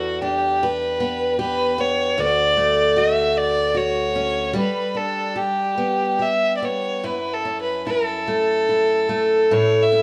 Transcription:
Already playing: E2 E4 F#4
0.22 D4 G4
0.63 G4 B4
1.00 B3
1.39 G4 B4
1.78 B3 C#5
2.18 D2 F#4 D5
2.57 A3
2.96 F#4 E5
3.38 D5
3.75 F#4 C#5
4.16 C#4
4.53 G3 G4
4.58 B4
4.95 D4 A4
5.36 G4
5.78 B3
6.19 G4 E5
6.57 D5
6.62 B3 C#5
7.04 F#2 E4 B4
7.33 A4
7.45 C#4
7.61 B4
7.87 E4 A4
8.28 A3
8.69 E4
9.09 A3
9.51 A2 E4 C#5
9.82 E5
9.92 C#4

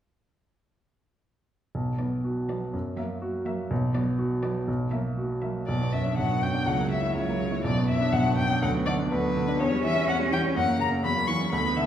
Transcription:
1.75 B1
1.98 F#3 B3 D5
2.24 F#4
2.48 F#3 B3 D5
2.73 F#2
2.97 F#3 A#3 E5
3.22 F#4
3.45 F#3 A#3 E5
3.71 B1
3.94 F#3 B3 D5
4.19 F#4
4.42 F#3 B3 D5
4.68 B1
4.91 F#3 A#3 E5
5.18 F#4
5.42 F#3 A#3 E5
5.67 B1 F#3 D5
5.81 B3
5.92 F#2 E5
6.05 D4
6.17 B1 F#3 F#5
6.30 B3
6.42 F#2 G5
6.54 D4
6.66 C#2 F#3 F#5
6.77 A#3
6.90 C#3 E5
7.03 E4
7.15 C#2 F#3 C#5
7.27 A#3
7.40 C#3
7.52 E4
7.64 B1 F#3 D5
7.77 B3
7.89 F#2 E5
8.01 D4
8.13 B1 F#3 F#5
8.26 B3
8.38 F#2 G5
8.51 D4
8.61 D2 F#3 F#5
8.74 B3
8.86 D3 D5
8.99 D4
9.11 D2 F#3 B4
9.24 B3
9.37 D3
9.48 D4
9.60 E2 C#4 C#5
9.72 G3
9.84 E3 E5
9.96 C#4
10.08 E2 F#5
10.19 G3
10.31 E3 G5
10.44 C#4
10.56 F#2 A#3 F#5
10.67 A#3
10.79 C#3 A#5
10.91 C#4
11.03 E2 F#3 B5
11.15 A#3
11.27 E3 C#6
11.41 C#4
11.52 D2 B3 B5
11.64 B3
11.77 D3 E5

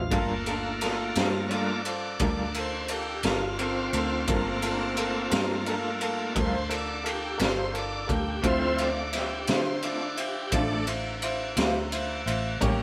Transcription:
Already playing: F4
0.11 G1 G3 A3 A#3 D4 F4 A4 A#4, kick, ride
0.46 F4 A4 A#4, ride
0.50 D4
0.81 F4 A4 A#4, snare, ride
1.15 G2 D4 F4 A4 A#4 C5, snare, ride
1.48 G3 A3 A#3 D4 F4 A4 A#4 C#5, ride
1.52 F4 A#4 D5
1.85 F4 A4 C5, ride
2.19 D2 G3 D4 F4 A4 A#4, kick, ride
2.54 F4 A4 A#4, ride
2.59 C5
2.88 F4 G4 A4 A#4, ride
3.23 G1 F4 A4 A#4, snare, ride
3.28 D4
3.59 C4 F4 A4 A#4, ride
3.93 D2 F4 A4 A#4, ride
4.27 G1 G3 A3 A#3 D4 F4 A4 A#4, kick, ride
4.62 D4 F4 A4 A#4, ride
4.97 F4 A4 A#4, ride
5.31 G2 D4 F4 A4 A#4, snare, ride
5.66 G3 D4 F4 A4 A#4, ride
6.01 A3 A#3 F4 A4 A#4, ride
6.35 D2 G3 D4 F4 A4 A#4 B4, kick, ride
6.40 C5
6.69 F4 A4 A#4, ride
6.75 D5
7.03 F4 G4 A4 A#4, ride
7.38 G1 F4 A4 A#4 B4, snare, ride
7.42 D4 C5
7.72 F4 A4 A#4, ride
7.78 D5
8.07 D2 F4 A4 A#4, kick, ride
8.11 G4
8.42 D2 D3 F3 A3 C4 E4 F4 B4 C5, kick, ride
8.46 F4 C5
8.76 E4 F4 C5, ride
8.80 A3 C4 D5
9.12 E4 F4 C5, snare, ride
9.18 G4
9.47 D3 A3 C4 E4 F4 C5, snare, ride
9.82 D3 A3 C4 E4 F4 C5 D5, ride
10.17 E4 F4 G4 C5, ride
10.51 A1 D3 A3 C4 D4 E4 F4 C5, kick, ride
10.87 E4 F4 C5, ride
11.22 E4 F4 C5, ride
11.56 D2 A3 C4 E4 F4 C5, snare, ride
11.92 E4 F4 C5, ride
12.26 A1 E4 F4 C5, ride
12.60 A1 A2 G3 A#3 C#4 G4 A#4 C#5, kick, ride

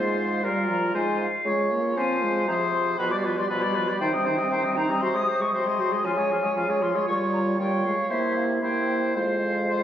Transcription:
Already playing: G#2 G#3 F4 C5 F5
0.44 A#2 G3 F4 A#4
0.69 F3 A#5
0.94 G#2 G#3 F4 C5 G#5
1.20 F5
1.45 C#3 G#3 F4 C#5
1.71 A#3
1.97 F3 C4 C5 G#5
2.22 G#3
2.47 C3 F3 G#4 C5 A#5
2.73 C6
2.98 B2 F3 F4 B4 B5
3.11 G3 G4 D5 D6
3.24 F3 F4 B4
3.37 G3 G4 D5 C6
3.50 B2 F3 F4 B4 B5
3.62 G3 G4 D5
3.75 F3 F4 B4
3.88 G3 G4 D5
4.00 C3 D#3 D#4 C5 G5
4.13 G3 C4 D#5
4.26 D#3 D#4 C5
4.38 G3 C4 D#5
4.50 C3 D#3 D#4 C5
4.64 G3 C4 D#5
4.76 D#3 D#4 C5 A#5
4.89 G3 C4 D#5
5.01 C3 F#3 F#4 C5 C6
5.14 G#3 G#4 D#5 D#6
5.27 F#3 F#4 C5
5.40 G#3 G#4 D#5 C#6
5.53 C3 F#3 F#4 C5 C6
5.66 G#3 G#4 D#5
5.78 F#3 F#4 C5
5.92 G#3 G#4 D#5
6.04 C#3 F3 F4 F5 G#5
6.17 G#3 G#4 C#5
6.30 F3 F4 F5
6.43 G#3 G#4 C#5
6.56 C#3 F3 F4 F5
6.68 G#3 G#4 C#5
6.82 F3 F4 F5 C6
6.95 G#3 G#4 C#5
7.07 A#2 G3 F4 C#5 C#6
7.33 A#5
7.59 G3 F4 C#5 G5
7.85 G#3 F5
8.10 C3 A#3 E4 C5 E5
8.37 F5
8.62 A#3 E4 C5 G5
9.15 F2 G#3 F4 C5 F5
9.69 C5

